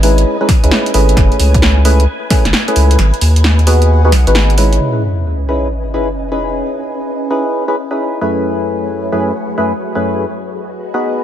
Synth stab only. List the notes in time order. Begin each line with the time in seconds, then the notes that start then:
0.03 G#3 C#4 D#4 E4 B4
0.41 G#3 C#4 D#4 E4 B4
0.64 G#3 C#4 D#4 E4 B4
0.94 A3 C#4 E4 G#4 B4
1.85 A3 C#4 E4 G#4 B4
2.31 A3 C#4 E4 G#4 B4
2.68 A3 C#4 E4 G#4 B4
3.67 B3 D#4 F#4 G#4 B4
4.05 B3 D#4 F#4 G#4 B4
4.27 B3 D#4 F#4 G#4 B4
4.58 G#3 C#4 D#4 E4 B4
5.49 C#4 D#4 E4 G#4 B4
5.94 C#4 D#4 E4 G#4 B4
6.32 C#4 D#4 E4 G#4 B4
7.30 C#4 D#4 E4 G#4 B4
7.68 C#4 D#4 E4 G#4 B4
7.91 C#4 D#4 E4 G#4 B4
8.21 F#2 A3 C#4 E4 G#4 B4
9.12 F#2 A3 C#4 E4 G#4 B4
9.58 F#2 A3 C#4 E4 G#4 B4
9.95 F#2 A3 C#4 E4 G#4 B4
10.94 B3 D#4 F#4 G#4 B4